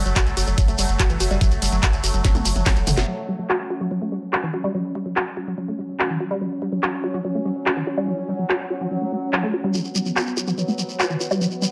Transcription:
Already playing: synth texture F#3 A3
0.06 analog synth bass F#1, synth arpeggio sound F#3, closed hi-hat, shekere
0.16 synth arpeggio sound F#4, kick, clap, closed hi-hat, ride, shekere
0.27 analog synth bass F#1, closed hi-hat, shekere
0.37 analog synth bass F#1, synth arpeggio sound F#4, open hi-hat, ride, shekere
0.47 analog synth bass F#1, synth arpeggio sound F#3, closed hi-hat, shekere
0.58 synth arpeggio sound F#3, kick, closed hi-hat, ride, shekere
0.68 analog synth bass F#1, synth arpeggio sound A3, closed hi-hat, shekere
0.78 analog synth bass F#1, synth arpeggio sound G3, open hi-hat, ride, shekere
0.89 analog synth bass F#1, closed hi-hat, shekere
0.99 synth arpeggio sound F#4, kick, clap, closed hi-hat, ride, shekere
1.10 analog synth bass F#1, synth arpeggio sound E3, closed hi-hat, shekere
1.20 analog synth bass F#1, synth arpeggio sound F#4, open hi-hat, ride, shekere
1.31 analog synth bass F#1, synth arpeggio sound G3, closed hi-hat, shekere
1.41 synth arpeggio sound F#3, kick, closed hi-hat, ride, shekere
1.51 analog synth bass F#1, closed hi-hat, shekere
1.62 analog synth bass F#1, synth arpeggio sound G3, open hi-hat, ride, shekere
1.72 analog synth bass F#1, synth arpeggio sound F#3, closed hi-hat, shekere
1.83 synth arpeggio sound F#4, kick, clap, closed hi-hat, ride, shekere
1.93 analog synth bass F#1, closed hi-hat, shekere
2.04 analog synth bass F#1, synth arpeggio sound F#4, open hi-hat, ride, shekere
2.14 analog synth bass F#1, synth arpeggio sound F#3, closed hi-hat, shekere
2.24 synth arpeggio sound F#3, kick, snare, closed hi-hat, ride, shekere
2.35 analog synth bass F#1, synth arpeggio sound A3, closed hi-hat, high tom, shekere
2.45 analog synth bass F#1, synth arpeggio sound F#3, open hi-hat, ride, shekere
2.56 analog synth bass F#1, closed hi-hat, mid tom, shekere
2.66 synth arpeggio sound F#3, kick, snare, clap, open hi-hat, ride, shekere
2.76 analog synth bass E1, synth arpeggio sound F#3, closed hi-hat, shekere
2.87 analog synth bass F#1, synth arpeggio sound E3, mid tom, open hi-hat, ride, shekere
2.97 analog synth bass F#1, synth arpeggio sound F#4, snare, closed hi-hat, shekere
3.08 synth texture F#3 C#4, synth arpeggio sound F#3
3.29 synth arpeggio sound G3
3.39 synth arpeggio sound F#3
3.50 synth arpeggio sound F#4, clap
3.70 synth arpeggio sound F#4
3.81 synth arpeggio sound F#3
3.91 synth arpeggio sound F#3
4.02 synth arpeggio sound A3
4.12 synth arpeggio sound G3
4.33 synth arpeggio sound F#4, clap
4.43 synth arpeggio sound E3
4.54 synth arpeggio sound F#4
4.64 synth arpeggio sound G3
4.74 synth arpeggio sound F#3
4.95 synth arpeggio sound G3
5.06 synth arpeggio sound F#3
5.16 synth arpeggio sound F#4, clap
5.37 synth arpeggio sound F#4
5.47 synth arpeggio sound F#3
5.58 synth arpeggio sound F#3
5.68 synth arpeggio sound A3
5.79 synth arpeggio sound G3
5.99 synth arpeggio sound F#4, clap
6.10 synth arpeggio sound E3
6.20 synth arpeggio sound F#4
6.31 synth arpeggio sound G3
6.41 synth arpeggio sound F#3
6.62 synth arpeggio sound G3
6.72 synth arpeggio sound F#3
6.83 synth arpeggio sound F#4, clap
7.04 synth arpeggio sound F#4
7.14 synth arpeggio sound F#3
7.25 synth arpeggio sound F#3
7.35 synth arpeggio sound A3
7.45 synth arpeggio sound G3
7.66 synth arpeggio sound F#4, clap
7.77 synth arpeggio sound E3
7.87 synth arpeggio sound F#4
7.97 synth arpeggio sound G3
8.08 synth arpeggio sound F#3
8.29 synth arpeggio sound G3
8.39 synth arpeggio sound F#3
8.50 synth arpeggio sound F#4, clap
8.70 synth arpeggio sound F#4
8.81 synth arpeggio sound F#3
8.91 synth arpeggio sound F#3
9.02 synth arpeggio sound A3
9.12 synth arpeggio sound A3
9.33 synth arpeggio sound F#3, clap
9.43 synth arpeggio sound A3
9.54 synth arpeggio sound F#4
9.64 synth arpeggio sound G3
9.74 synth arpeggio sound F#3, synth texture B3, shekere
9.84 shekere
9.95 synth arpeggio sound G3, shekere
10.06 synth arpeggio sound F#3, shekere
10.16 synth arpeggio sound F#4, clap, shekere
10.27 shekere
10.37 synth arpeggio sound F#4, shekere
10.47 synth arpeggio sound F#3, shekere
10.58 synth arpeggio sound F#3, shekere
10.68 synth arpeggio sound A3, shekere
10.78 synth arpeggio sound G3, shekere
10.89 shekere
11.00 synth arpeggio sound F#4, clap, shekere
11.10 synth arpeggio sound E3
11.20 synth arpeggio sound F#4, shekere
11.31 synth arpeggio sound G3, shekere
11.41 synth arpeggio sound F#3, shekere
11.51 shekere
11.62 synth arpeggio sound G3, shekere

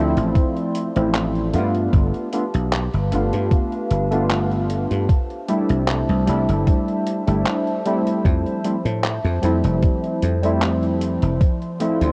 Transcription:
Already playing: slap bass D2, synth keys F3 A3 C4 E4, ambient pad F3 D5 E5 C6
0.17 slap bass A1, closed hi-hat
0.35 kick, closed hi-hat
0.56 closed hi-hat
0.75 closed hi-hat
0.95 slap bass A1, synth keys F3 A3 C4 E4, closed hi-hat
1.14 clap, closed hi-hat
1.35 closed hi-hat
1.53 slap bass G2, synth keys A3 B3 D4 F4, closed hi-hat
1.75 closed hi-hat
1.93 slap bass G1, ambient pad G4 B4 F5 A5, kick, closed hi-hat
2.14 closed hi-hat
2.33 synth keys A3 B3 D4 F4, closed hi-hat
2.54 slap bass B1, closed hi-hat
2.72 clap, closed hi-hat
2.93 slap bass G1, closed hi-hat
3.11 slap bass G1, synth keys A3 B3 D4 F4, closed hi-hat
3.33 slap bass G2, closed hi-hat
3.51 kick, closed hi-hat
3.72 closed hi-hat
3.91 slap bass G1, closed hi-hat
4.11 synth keys A3 B3 D4 F4, closed hi-hat
4.30 clap, closed hi-hat
4.51 closed hi-hat
4.70 closed hi-hat
4.91 slap bass G2, closed hi-hat
5.09 ambient pad D4 C5 E5, kick, closed hi-hat
5.30 closed hi-hat
5.48 synth keys G3 A3 D4 E4, closed hi-hat
5.70 slap bass C2, closed hi-hat
5.88 clap, closed hi-hat
6.09 slap bass C2, closed hi-hat
6.26 slap bass C2, synth keys G3 A3 D4 E4, closed hi-hat
6.49 slap bass G1, closed hi-hat
6.67 kick, closed hi-hat
6.88 closed hi-hat
7.06 closed hi-hat
7.27 slap bass G1, synth keys G3 A3 D4 E4, closed hi-hat
7.46 clap, closed hi-hat
7.67 closed hi-hat
7.85 synth keys G3 A3 C4 E4, closed hi-hat
8.07 closed hi-hat
8.25 slap bass F2, ambient pad F3, kick, closed hi-hat
8.46 closed hi-hat
8.64 synth keys G3 A3 C4 E4, closed hi-hat
8.85 slap bass A2, closed hi-hat
9.04 clap, closed hi-hat
9.25 slap bass F2, closed hi-hat
9.42 slap bass F2, synth keys G3 A3 C4 E4, closed hi-hat
9.64 slap bass F1, closed hi-hat
9.83 kick, closed hi-hat
10.04 closed hi-hat
10.22 slap bass F2, closed hi-hat
10.42 synth keys G3 A3 C4 E4, closed hi-hat
10.62 clap, closed hi-hat
10.83 closed hi-hat
11.01 closed hi-hat
11.22 slap bass F1, closed hi-hat
11.41 ambient pad D5 C6, kick, closed hi-hat
11.62 closed hi-hat
11.80 synth keys F3 A3 C4 E4, closed hi-hat
12.01 slap bass D2, closed hi-hat

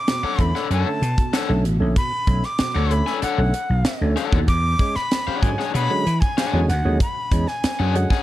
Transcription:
Already playing: flute D6
0.07 tonewheel organ B2, snare, closed hi-hat
0.23 overdriven electric guitar D4 A4 C#5 F#5, muted slap bass stroke
0.39 slap bass E2, tonewheel organ D3 A3 C#4, flute B5, kick, closed hi-hat
0.55 tonewheel organ A3 C#4, overdriven electric guitar D4 A4 C#5 F#5, snare
0.70 slap bass F#2, overdriven electric guitar D4 A4 C#5 F#5, flute A5, closed hi-hat
0.86 tonewheel organ D3 A3 C#4
1.02 slap bass B2, closed hi-hat
1.18 tonewheel organ B2, kick, closed hi-hat
1.33 overdriven electric guitar D4 A4 C#5 F#5, snare, closed hi-hat
1.49 slap bass B1, tonewheel organ D3 A3 C#4
1.64 slap bass A1, tonewheel organ B2, closed hi-hat
1.80 slap bass A#1, tonewheel organ D3 A3 C#4
1.96 tonewheel organ B2, flute B5, kick, closed hi-hat
2.27 slap bass B1, tonewheel organ A3 C#4, kick, closed hi-hat
2.43 flute D6, snare
2.58 tonewheel organ B2, muted slap bass stroke, snare, closed hi-hat
2.75 slap bass D2, overdriven electric guitar D4 A4 C#5 F#5
2.91 tonewheel organ D3 A3 C#4, flute B5, closed hi-hat
3.06 tonewheel organ A3 C#4, overdriven electric guitar D4 A4 C#5 G#5, snare
3.22 overdriven electric guitar D4 A4 C#5 F#5, flute F#5, muted slap bass stroke, closed hi-hat
3.38 slap bass B1, tonewheel organ D3 A3 C#4
3.54 closed hi-hat
3.70 slap bass B1, tonewheel organ B2
3.85 snare, closed hi-hat
4.01 slap bass D2, tonewheel organ D3 A3 C#4
4.16 overdriven electric guitar D4 A4 C#5 F#5, snare, closed hi-hat
4.33 slap bass D#2, tonewheel organ B2, kick
4.48 slap bass E2, flute D6, kick, closed hi-hat
4.79 tonewheel organ G#3 C#4, kick, closed hi-hat
4.95 flute B5, muted slap bass stroke, snare
5.11 snare, closed hi-hat
5.27 overdriven electric guitar D4 G#4 C#5 F#5, muted slap bass stroke
5.42 slap bass G#2, tonewheel organ D3 F#3 G#3 C#4, flute G#5, kick, closed hi-hat
5.58 tonewheel organ G#3 C#4, overdriven electric guitar D4 G#4 C#5 F#5, snare
5.74 slap bass B2, overdriven electric guitar D4 G#4 C#5 F#5, flute B5, closed hi-hat
5.90 tonewheel organ D3 F#3 G#3 C#4
6.07 slap bass E3, closed hi-hat
6.21 flute G#5, kick, closed hi-hat
6.37 overdriven electric guitar D4 G#4 C#5 F#5, snare, closed hi-hat
6.53 slap bass E2, tonewheel organ D3 F#3 G#3 C#4
6.69 slap bass D2, flute F#5, snare, closed hi-hat
6.85 slap bass D#2, tonewheel organ D3 F#3 G#3 C#4
7.00 flute B5, kick, closed hi-hat
7.32 slap bass E2, tonewheel organ G#3 C#4, kick, closed hi-hat
7.48 flute G#5, snare
7.64 muted slap bass stroke, snare, closed hi-hat
7.79 slap bass F#2, overdriven electric guitar D4 G#4 C#5 F#5
7.95 tonewheel organ D3 F#3 G#3 C#4, flute F#5, closed hi-hat
8.10 tonewheel organ G#3 C#4, overdriven electric guitar D4 G#4 C#5 G#5, kick, snare

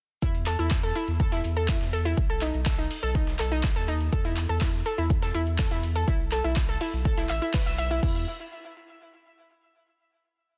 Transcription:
0.22 sub bass E2, synth pluck E4, kick, closed hi-hat, cabasa, shaker
0.35 closed hi-hat, cabasa
0.46 synth pluck A4, clap, open hi-hat, cabasa, shaker
0.59 sub bass E2, synth pluck E4, closed hi-hat, cabasa
0.71 kick, snare, clap, closed hi-hat, cabasa, shaker
0.83 synth pluck A4, closed hi-hat
0.95 synth pluck E4, open hi-hat, cabasa, shaker
1.08 sub bass E2, closed hi-hat, cabasa
1.20 synth pluck A4, kick, closed hi-hat, cabasa, shaker
1.32 synth pluck E4, snare, closed hi-hat, cabasa
1.44 sub bass E2, open hi-hat, cabasa, shaker
1.57 synth pluck A4, closed hi-hat, cabasa
1.68 synth pluck E4, kick, snare, clap, closed hi-hat, cabasa, shaker
1.81 sub bass E2, snare, closed hi-hat, cabasa
1.93 synth pluck A4, open hi-hat, cabasa, shaker
2.05 synth pluck E4, closed hi-hat, cabasa
2.17 sub bass B1, kick, closed hi-hat, cabasa, shaker
2.30 synth pluck A4, cabasa
2.42 synth pluck D#4, clap, open hi-hat, cabasa, shaker
2.54 sub bass B1, closed hi-hat, cabasa
2.66 synth pluck A4, kick, snare, clap, closed hi-hat, cabasa, shaker
2.78 synth pluck D#4, closed hi-hat
2.91 open hi-hat, cabasa
3.03 sub bass B1, synth pluck A4, closed hi-hat, cabasa
3.15 synth pluck D#4, kick, closed hi-hat, cabasa, shaker
3.27 snare, closed hi-hat, cabasa
3.39 sub bass B1, synth pluck A4, clap, open hi-hat, cabasa, shaker
3.52 synth pluck D#4, closed hi-hat, cabasa
3.63 kick, snare, clap, closed hi-hat, cabasa, shaker
3.76 sub bass D#2, synth pluck A4, closed hi-hat, cabasa
3.88 synth pluck D#4, open hi-hat, cabasa, shaker
4.00 closed hi-hat, cabasa
4.13 sub bass E2, synth pluck A4, kick, closed hi-hat, cabasa, shaker
4.25 synth pluck E4, closed hi-hat, cabasa
4.37 clap, open hi-hat, cabasa, shaker
4.49 sub bass E2, synth pluck A4, closed hi-hat, cabasa
4.61 synth pluck E4, kick, snare, clap, closed hi-hat, cabasa, shaker
4.74 closed hi-hat
4.86 synth pluck A4, open hi-hat, cabasa, shaker
4.98 sub bass E2, synth pluck E4, closed hi-hat, cabasa
5.10 kick, closed hi-hat, cabasa, shaker
5.22 synth pluck A4, snare, closed hi-hat, cabasa
5.34 sub bass E2, synth pluck E4, open hi-hat, cabasa, shaker
5.47 closed hi-hat, cabasa
5.59 synth pluck A4, kick, snare, clap, closed hi-hat, cabasa, shaker
5.71 sub bass E2, synth pluck E4, snare, closed hi-hat, cabasa
5.83 open hi-hat, cabasa, shaker
5.96 synth pluck A4, closed hi-hat, cabasa
6.08 sub bass B1, synth pluck E4, kick, closed hi-hat, cabasa, shaker
6.20 cabasa
6.32 synth pluck A4, clap, open hi-hat, cabasa, shaker
6.44 sub bass B1, synth pluck E4, closed hi-hat, cabasa
6.56 kick, snare, clap, closed hi-hat, cabasa, shaker
6.69 synth pluck A4, closed hi-hat
6.81 synth pluck E4, open hi-hat, cabasa
6.93 sub bass B1, closed hi-hat, cabasa
7.05 synth pluck A4, kick, closed hi-hat, cabasa, shaker
7.17 synth pluck E4, snare, closed hi-hat, cabasa
7.29 sub bass A1, synth pluck E5, clap, open hi-hat, cabasa, shaker
7.42 synth pluck E4, closed hi-hat, cabasa
7.54 synth pluck B4, kick, snare, clap, closed hi-hat, cabasa, shaker
7.66 sub bass B1, synth pluck E5, closed hi-hat, cabasa
7.78 synth pluck E5, open hi-hat, cabasa, shaker
7.91 synth pluck E4, closed hi-hat, cabasa
8.03 sub bass E2, synth pluck E4, kick, crash

